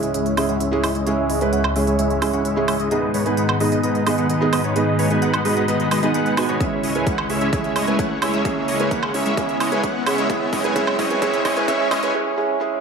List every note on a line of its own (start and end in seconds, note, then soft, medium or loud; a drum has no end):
0.00 2.88 C#2 medium
0.00 2.88 C#3 medium
0.00 0.34 G#3 medium
0.00 0.12 G#3 medium
0.00 0.35 C#4 medium
0.00 0.12 C#4 medium
0.00 0.35 E4 medium
0.00 2.88 E4 medium
0.00 0.12 E4 medium
0.00 0.35 G#4 medium
0.00 4.72 G#4 medium
0.00 0.12 C#5 medium
0.00 0.12 E5 medium
0.00 closed hi-hat medium
0.00 riser medium
0.14 0.35 G#3 medium
0.14 0.35 C#4 medium
0.14 0.35 E4 medium
0.14 0.35 C#5 medium
0.14 0.35 E5 medium
0.14 closed hi-hat medium
0.26 closed hi-hat soft
0.37 0.55 G#3 medium
0.37 0.46 G#3 medium
0.37 0.55 C#4 medium
0.37 0.46 C#4 medium
0.37 0.46 E4 medium
0.37 0.55 E4 medium
0.37 0.55 G#4 medium
0.37 0.46 C#5 medium
0.37 0.46 E5 medium
0.37 open hi-hat loud
0.37 high woodblock medium
0.49 0.58 G#3 medium
0.49 0.58 C#4 medium
0.49 0.58 E4 medium
0.49 0.58 C#5 medium
0.49 0.58 F#5 loud
0.49 closed hi-hat medium
0.60 0.80 G#3 medium
0.60 0.80 C#4 medium
0.60 0.80 E4 medium
0.60 0.80 C#5 medium
0.60 0.80 E5 medium
0.60 closed hi-hat medium
0.71 0.83 G#3 medium
0.71 0.83 C#4 medium
0.71 0.83 E4 medium
0.71 0.83 G#4 loud
0.84 0.92 G#3 medium
0.84 0.92 C#4 medium
0.84 0.92 E4 medium
0.84 0.92 C#5 medium
0.84 0.92 E5 medium
0.84 open hi-hat loud
0.84 high woodblock medium
0.95 1.05 G#3 medium
0.95 1.05 C#4 medium
0.95 1.05 E4 medium
0.95 1.05 C#5 medium
0.95 1.05 D#5 medium
0.95 closed hi-hat medium
1.06 1.38 G#3 medium
1.06 1.27 G#3 medium
1.06 1.38 C#4 medium
1.06 1.27 C#4 medium
1.06 1.27 E4 medium
1.06 1.39 E4 medium
1.06 1.39 G#4 medium
1.06 1.27 C#5 medium
1.06 1.27 E5 loud
1.06 closed hi-hat medium
1.30 1.40 G#3 medium
1.30 1.40 C#4 medium
1.30 1.40 E4 medium
1.30 1.40 C#5 medium
1.30 1.40 D#5 loud
1.30 open hi-hat loud
1.41 1.58 G#3 medium
1.41 1.51 G#3 medium
1.41 1.59 C#4 medium
1.41 1.51 C#4 medium
1.41 1.51 E4 medium
1.41 1.59 E4 medium
1.41 1.59 B4 medium
1.41 1.51 C#5 medium
1.41 1.51 G#5 medium
1.41 closed hi-hat medium
1.53 1.72 G#3 medium
1.53 1.72 C#4 medium
1.53 1.72 E4 medium
1.53 1.72 C#5 medium
1.53 1.72 F#5 medium
1.53 closed hi-hat medium
1.64 high woodblock medium
1.75 2.19 G#3 medium
1.75 1.86 G#3 medium
1.75 2.19 C#4 medium
1.75 1.86 C#4 medium
1.75 1.86 E4 medium
1.75 2.19 E4 medium
1.75 2.20 G#4 medium
1.75 1.86 C#5 medium
1.75 1.86 E5 medium
1.75 open hi-hat loud
1.87 1.96 G#3 medium
1.87 1.96 C#4 medium
1.87 1.96 E4 medium
1.87 1.96 C#5 medium
1.87 1.96 E5 medium
1.87 closed hi-hat soft
1.99 2.19 G#3 medium
1.99 2.19 C#4 medium
1.99 2.19 E4 medium
1.99 2.19 C#5 medium
1.99 2.19 E5 medium
1.99 closed hi-hat medium
2.10 closed hi-hat soft
2.21 2.39 G#3 medium
2.21 2.31 G#3 medium
2.21 2.39 C#4 medium
2.21 2.31 C#4 medium
2.21 2.31 E4 medium
2.21 2.40 E4 medium
2.21 2.40 G#4 medium
2.21 2.31 C#5 medium
2.21 2.31 E5 medium
2.21 open hi-hat loud
2.21 high woodblock medium
2.33 2.42 G#3 medium
2.33 2.42 C#4 medium
2.33 2.42 E4 medium
2.33 2.42 C#5 medium
2.33 2.42 F#5 loud
2.33 closed hi-hat medium
2.45 2.65 G#3 medium
2.45 2.65 C#4 medium
2.45 2.65 E4 medium
2.45 2.65 C#5 medium
2.45 2.65 E5 medium
2.45 closed hi-hat medium
2.56 2.67 G#3 medium
2.56 2.67 C#4 medium
2.56 2.68 E4 medium
2.56 2.68 G#4 loud
2.68 2.77 G#3 medium
2.68 2.77 C#4 medium
2.68 2.77 E4 medium
2.68 2.77 C#5 medium
2.68 2.77 E5 loud
2.68 open hi-hat loud
2.68 high woodblock medium
2.80 2.89 G#3 medium
2.80 2.90 C#4 medium
2.80 2.90 E4 medium
2.80 2.90 C#5 medium
2.80 2.90 D#5 medium
2.80 closed hi-hat medium
2.91 6.57 G#2 medium
2.91 6.57 D#3 medium
2.91 3.23 G#3 medium
2.91 3.12 G#3 medium
2.91 3.23 B3 medium
2.91 6.57 B3 medium
2.91 3.12 B3 medium
2.91 3.12 D#4 medium
2.91 3.23 D#4 medium
2.91 3.23 G#4 loud
2.91 3.12 B4 medium
2.91 3.12 D#5 medium
2.91 closed hi-hat medium
3.14 3.24 G#3 loud
3.14 3.24 B3 medium
3.14 3.24 D#4 medium
3.14 3.24 B4 medium
3.14 3.24 C#5 loud
3.14 open hi-hat loud
3.25 3.43 G#3 medium
3.25 3.36 G#3 medium
3.25 3.43 B3 medium
3.25 3.36 B3 medium
3.25 3.36 D#4 medium
3.25 3.43 D#4 medium
3.25 3.36 B4 medium
3.25 3.44 B4 medium
3.25 3.36 G#5 medium
3.25 closed hi-hat medium
3.37 3.57 G#3 medium
3.37 3.57 B3 medium
3.37 3.57 D#4 medium
3.37 3.57 B4 medium
3.37 3.57 F#5 medium
3.37 closed hi-hat medium
3.49 high woodblock medium
3.60 4.04 G#3 medium
3.60 3.70 G#3 medium
3.60 4.04 B3 medium
3.60 3.70 B3 medium
3.60 3.70 D#4 medium
3.60 4.04 D#4 medium
3.60 4.04 G#4 medium
3.60 3.70 B4 medium
3.60 3.70 D#5 medium
3.60 open hi-hat loud
3.72 3.81 G#3 medium
3.72 3.81 B3 medium
3.72 3.81 D#4 medium
3.72 3.81 B4 medium
3.72 3.81 D#5 medium
3.72 closed hi-hat medium
3.83 4.04 G#3 medium
3.83 4.04 B3 medium
3.83 4.04 D#4 medium
3.83 4.04 B4 medium
3.83 4.04 D#5 medium
3.83 closed hi-hat medium
3.95 closed hi-hat soft
4.06 4.24 G#3 medium
4.06 4.15 G#3 medium
4.06 4.24 B3 medium
4.06 4.15 B3 medium
4.06 4.15 D#4 medium
4.06 4.24 D#4 medium
4.06 4.24 G#4 medium
4.06 4.15 B4 medium
4.06 4.15 D#5 loud
4.06 open hi-hat loud
4.06 high woodblock medium
4.18 4.27 G#3 medium
4.18 4.27 B3 medium
4.18 4.27 D#4 medium
4.18 4.27 B4 medium
4.18 4.27 F#5 loud
4.18 closed hi-hat soft
4.30 4.49 G#3 medium
4.30 4.49 B3 medium
4.30 4.49 D#4 medium
4.30 4.49 B4 medium
4.30 4.49 D#5 medium
4.30 closed hi-hat medium
4.41 4.52 G#3 medium
4.41 4.52 B3 medium
4.41 4.52 D#4 medium
4.41 4.52 G#4 loud
4.53 4.62 G#3 medium
4.53 4.62 B3 medium
4.53 4.62 D#4 medium
4.53 4.62 B4 medium
4.53 4.62 D#5 loud
4.53 open hi-hat loud
4.53 high woodblock medium
4.64 4.74 G#3 medium
4.64 4.74 B3 medium
4.64 4.74 D#4 medium
4.64 4.74 B4 medium
4.64 4.74 C#5 medium
4.64 closed hi-hat soft
4.75 5.07 G#3 medium
4.75 4.96 G#3 medium
4.75 5.08 B3 medium
4.75 4.96 B3 medium
4.75 4.96 D#4 medium
4.75 5.08 D#4 medium
4.75 6.59 F#4 medium
4.75 5.08 G#4 medium
4.75 4.96 B4 medium
4.75 4.96 D#5 medium
4.75 closed hi-hat medium
4.99 5.09 G#3 medium
4.99 5.09 B3 medium
4.99 5.09 D#4 medium
4.99 5.09 B4 medium
4.99 5.09 C#5 loud
4.99 open hi-hat loud
5.10 5.28 G#3 medium
5.10 5.20 G#3 medium
5.10 5.28 B3 medium
5.10 5.20 B3 medium
5.10 5.20 D#4 medium
5.10 5.28 D#4 medium
5.10 5.20 B4 medium
5.10 5.28 B4 medium
5.10 5.20 G#5 medium
5.10 closed hi-hat soft
5.22 5.42 G#3 medium
5.22 5.42 B3 medium
5.22 5.42 D#4 medium
5.22 5.42 B4 medium
5.22 5.42 F#5 medium
5.22 closed hi-hat medium
5.34 closed hi-hat soft
5.34 high woodblock medium
5.44 5.88 G#3 medium
5.44 5.55 G#3 medium
5.44 5.88 B3 medium
5.44 5.55 B3 medium
5.44 5.55 D#4 medium
5.44 5.89 D#4 medium
5.44 5.89 G#4 medium
5.44 5.55 B4 medium
5.44 5.55 D#5 medium
5.44 open hi-hat loud
5.57 5.65 G#3 medium
5.57 5.65 B3 medium
5.57 5.65 D#4 medium
5.57 5.65 B4 medium
5.57 5.65 D#5 medium
5.57 closed hi-hat soft
5.68 5.88 G#3 medium
5.68 5.88 B3 medium
5.68 5.88 D#4 medium
5.68 5.88 B4 medium
5.68 5.88 D#5 medium
5.68 closed hi-hat medium
5.80 closed hi-hat soft
5.91 6.00 G#3 loud
5.91 6.00 B3 medium
5.91 6.00 D#4 medium
5.91 6.00 B4 medium
5.91 6.00 D#5 loud
5.91 open hi-hat loud
5.91 high woodblock medium
6.02 6.34 G#3 medium
6.02 6.12 G#3 loud
6.02 6.35 B3 medium
6.02 6.12 B3 medium
6.02 6.12 D#4 medium
6.02 6.35 D#4 medium
6.02 6.35 G#4 medium
6.02 6.12 B4 medium
6.02 6.12 D#5 loud
6.02 closed hi-hat soft
6.14 6.34 G#3 medium
6.14 6.34 B3 medium
6.14 6.34 D#4 medium
6.14 6.34 B4 medium
6.14 6.34 F#5 medium
6.14 closed hi-hat medium
6.26 closed hi-hat soft
6.37 6.57 G#3 medium
6.37 6.46 G#3 medium
6.37 6.58 B3 medium
6.37 6.46 B3 medium
6.37 6.46 D#4 medium
6.37 6.58 D#4 medium
6.37 6.58 F#4 medium
6.37 6.46 B4 medium
6.37 6.46 G#5 medium
6.37 open hi-hat loud
6.37 high woodblock medium
6.49 6.58 G#3 medium
6.49 6.58 B3 medium
6.49 6.58 D#4 medium
6.49 6.58 B4 medium
6.49 6.58 C#5 loud
6.49 closed hi-hat soft
6.60 10.26 C#2 medium
6.60 10.26 C#3 medium
6.60 6.92 G#3 medium
6.60 6.81 G#3 medium
6.60 6.92 C#4 medium
6.60 12.10 E4 medium
6.60 6.81 E4 medium
6.60 6.92 E4 medium
6.60 10.26 G#4 medium
6.60 6.93 G#4 medium
6.60 6.81 E5 medium
6.60 kick loud
6.60 closed hi-hat medium
6.83 6.93 G#3 medium
6.83 6.93 C#4 medium
6.83 6.93 E4 medium
6.83 6.93 C#5 medium
6.83 6.93 D#5 loud
6.83 open hi-hat loud
6.95 7.12 G#3 medium
6.95 7.05 G#3 medium
6.95 7.12 C#4 medium
6.95 7.05 C#4 medium
6.95 7.05 E4 medium
6.95 7.13 E4 medium
6.95 7.13 B4 medium
6.95 7.05 C#5 medium
6.95 7.05 G#5 medium
6.95 closed hi-hat medium
7.07 7.26 G#3 medium
7.07 7.26 C#4 medium
7.07 7.26 E4 medium
7.07 7.26 C#5 medium
7.07 7.26 F#5 medium
7.07 kick loud
7.07 closed hi-hat medium
7.18 high woodblock medium
7.29 7.51 G#3 medium
7.29 7.40 G#3 medium
7.29 7.51 C#4 medium
7.29 7.40 C#4 medium
7.29 7.40 E4 medium
7.29 7.51 E4 medium
7.29 7.51 G#4 medium
7.29 7.40 C#5 medium
7.29 7.40 E5 medium
7.29 open hi-hat loud
7.41 7.50 G#3 medium
7.41 7.50 C#4 medium
7.41 7.50 E4 medium
7.41 7.50 C#5 medium
7.41 7.50 E5 medium
7.41 closed hi-hat soft
7.52 7.84 G#3 medium
7.52 7.73 G#3 medium
7.52 7.85 C#4 medium
7.52 7.73 C#4 medium
7.52 7.73 E4 medium
7.52 7.85 E4 medium
7.52 7.85 G#4 medium
7.52 7.73 C#5 medium
7.52 7.73 E5 medium
7.52 kick loud
7.52 closed hi-hat medium
7.64 closed hi-hat soft
7.76 7.86 G#3 medium
7.76 7.86 C#4 medium
7.76 7.86 E4 medium
7.76 7.86 C#5 medium
7.76 7.86 D#5 loud
7.76 open hi-hat loud
7.76 high woodblock medium
7.87 8.05 G#3 medium
7.87 7.97 G#3 medium
7.87 8.05 C#4 medium
7.87 7.97 C#4 medium
7.87 7.97 E4 medium
7.87 8.05 E4 medium
7.87 8.05 B4 medium
7.87 7.97 C#5 medium
7.87 7.97 G#5 medium
7.87 closed hi-hat soft
7.99 8.19 G#3 medium
7.99 8.19 C#4 medium
7.99 8.19 E4 medium
7.99 8.19 C#5 medium
7.99 8.19 F#5 medium
7.99 kick loud
7.99 closed hi-hat medium
8.21 8.43 G#3 medium
8.21 8.32 G#3 medium
8.21 8.43 C#4 medium
8.21 8.32 C#4 medium
8.21 8.32 E4 medium
8.21 8.43 E4 medium
8.21 8.44 G#4 medium
8.21 8.32 C#5 medium
8.21 8.32 E5 medium
8.21 open hi-hat loud
8.21 high woodblock medium
8.34 8.42 G#3 medium
8.34 8.42 C#4 medium
8.34 8.42 E4 medium
8.34 8.42 C#5 medium
8.34 8.42 E5 medium
8.34 closed hi-hat medium
8.45 8.77 G#3 medium
8.45 8.65 G#3 medium
8.45 8.77 C#4 medium
8.45 8.65 C#4 medium
8.45 8.65 E4 medium
8.45 8.77 E4 medium
8.45 8.77 G#4 medium
8.45 8.65 C#5 medium
8.45 8.65 E5 medium
8.45 kick loud
8.45 closed hi-hat medium
8.68 8.78 G#3 medium
8.68 8.78 C#4 medium
8.68 8.78 E4 medium
8.68 8.78 C#5 medium
8.68 8.78 D#5 loud
8.68 open hi-hat medium
8.79 8.97 G#3 medium
8.79 8.90 G#3 medium
8.79 8.97 C#4 medium
8.79 8.90 C#4 medium
8.79 8.90 E4 medium
8.79 8.97 E4 medium
8.79 8.98 B4 medium
8.79 8.90 C#5 medium
8.79 8.90 G#5 medium
8.79 closed hi-hat medium
8.91 9.11 G#3 medium
8.91 9.11 C#4 medium
8.91 9.11 E4 medium
8.91 9.11 C#5 medium
8.91 9.11 F#5 medium
8.91 kick loud
8.91 closed hi-hat medium
9.03 high woodblock medium
9.14 9.35 G#3 medium
9.14 9.24 G#3 medium
9.14 9.36 C#4 medium
9.14 9.24 C#4 medium
9.14 9.24 E4 medium
9.14 9.36 E4 medium
9.14 9.36 G#4 medium
9.14 9.24 C#5 medium
9.14 9.24 E5 medium
9.14 open hi-hat loud
9.26 9.35 G#3 medium
9.26 9.35 C#4 medium
9.26 9.35 E4 medium
9.26 9.35 C#5 medium
9.26 9.35 E5 medium
9.26 closed hi-hat medium
9.37 9.69 G#3 medium
9.37 9.58 G#3 medium
9.37 9.69 C#4 medium
9.37 9.58 C#4 medium
9.37 9.58 E4 medium
9.37 9.69 E4 medium
9.37 9.70 G#4 medium
9.37 9.58 E5 medium
9.37 kick loud
9.37 closed hi-hat medium
9.49 closed hi-hat soft
9.60 9.70 G#3 loud
9.60 9.70 C#4 medium
9.60 9.70 E4 medium
9.60 9.70 C#5 medium
9.60 9.70 D#5 loud
9.60 open hi-hat loud
9.60 high woodblock medium
9.71 9.89 G#3 medium
9.71 9.82 G#3 medium
9.71 9.89 C#4 medium
9.71 9.82 C#4 medium
9.71 9.82 E4 medium
9.71 9.90 E4 medium
9.71 9.90 B4 medium
9.71 9.82 C#5 medium
9.71 9.82 G#5 medium
9.71 closed hi-hat medium
9.83 10.03 E4 medium
9.83 kick loud
9.83 closed hi-hat medium
10.06 10.28 G#3 medium
10.06 10.16 G#3 medium
10.06 10.28 C#4 medium
10.06 10.16 C#4 medium
10.06 10.16 E4 medium
10.06 10.28 E4 medium
10.06 10.28 G#4 medium
10.06 10.16 C#5 medium
10.06 10.16 E5 medium
10.06 open hi-hat loud
10.06 high woodblock medium
10.18 10.27 G#3 medium
10.18 10.27 C#4 medium
10.18 10.27 E4 medium
10.18 10.27 C#5 medium
10.18 10.27 E5 medium
10.18 closed hi-hat soft
10.29 12.12 F#2 medium
10.29 12.12 C#3 medium
10.29 10.61 G#3 medium
10.29 10.50 G#3 medium
10.29 10.61 C#4 medium
10.29 10.50 C#4 medium
10.29 10.50 E4 medium
10.29 10.62 E4 medium
10.29 10.62 G#4 medium
10.29 10.50 C#5 medium
10.29 kick loud
10.29 closed hi-hat medium
10.53 10.63 G#3 loud
10.53 10.63 C#4 medium
10.53 10.63 E4 medium
10.53 10.63 C#5 medium
10.53 10.63 D#5 loud
10.53 kick loud
10.53 open hi-hat loud
10.64 10.74 G#3 medium
10.64 10.74 C#4 medium
10.64 10.74 E4 medium
10.64 10.74 B4 medium
10.64 10.74 C#5 medium
10.64 10.74 G#5 medium
10.64 closed hi-hat medium
10.75 11.07 G#3 medium
10.75 10.96 G#3 medium
10.75 11.08 C#4 medium
10.75 10.96 C#4 medium
10.75 10.96 E4 medium
10.75 11.08 E4 medium
10.75 11.08 G#4 medium
10.75 10.96 C#5 medium
10.75 10.96 E5 medium
10.75 kick loud
10.75 closed hi-hat medium
10.87 high woodblock medium
10.99 11.09 G#3 loud
10.99 11.09 C#4 medium
10.99 11.09 E4 medium
10.99 11.09 C#5 medium
10.99 11.09 D#5 loud
10.99 kick loud
10.99 open hi-hat loud
11.10 11.20 G#3 medium
11.10 11.20 C#4 medium
11.10 11.20 E4 medium
11.10 11.20 B4 medium
11.10 11.20 C#5 medium
11.10 11.20 G#5 medium
11.10 closed hi-hat medium
11.21 11.54 G#3 medium
11.21 11.42 G#3 medium
11.21 11.54 C#4 medium
11.21 11.42 C#4 medium
11.21 11.42 E4 medium
11.21 11.54 E4 medium
11.21 11.54 G#4 medium
11.21 11.42 C#5 medium
11.21 11.42 E5 loud
11.21 kick loud
11.21 closed hi-hat medium
11.33 closed hi-hat soft
11.45 11.55 G#3 loud
11.45 11.55 C#4 medium
11.45 11.55 E4 medium
11.45 11.55 C#5 loud
11.45 11.55 D#5 loud
11.45 kick loud
11.45 open hi-hat loud
11.45 high woodblock medium
11.56 11.66 G#3 medium
11.56 11.66 C#4 medium
11.56 11.66 E4 medium
11.56 11.67 B4 medium
11.56 11.66 C#5 medium
11.56 11.66 G#5 medium
11.56 closed hi-hat medium
11.67 12.00 G#3 medium
11.67 11.88 G#3 medium
11.67 12.00 C#4 medium
11.67 11.88 C#4 medium
11.67 11.88 E4 medium
11.67 12.00 E4 medium
11.67 12.00 G#4 medium
11.67 11.88 C#5 medium
11.67 11.88 E5 loud
11.67 kick loud
11.67 closed hi-hat medium
11.91 12.01 G#3 medium
11.91 12.01 C#4 medium
11.91 12.01 E4 medium
11.91 12.01 C#5 medium
11.91 12.01 D#5 loud
11.91 kick loud
11.91 open hi-hat loud
11.91 high woodblock medium
12.02 12.12 G#3 medium
12.02 12.12 C#4 medium
12.02 12.12 E4 medium
12.02 12.13 E4 medium
12.02 12.13 B4 medium
12.02 12.12 C#5 medium
12.02 12.12 G#5 medium
12.02 closed hi-hat medium
12.14 12.35 G#3 medium
12.14 12.35 C#4 medium
12.14 12.36 E4 medium
12.14 12.36 G#4 loud
12.37 12.58 G#3 medium
12.37 12.58 C#4 medium
12.37 12.59 E4 medium
12.37 12.59 G#4 medium
12.60 12.80 G#3 medium
12.60 12.80 C#4 medium
12.60 12.80 E4 medium
12.60 12.80 G#4 medium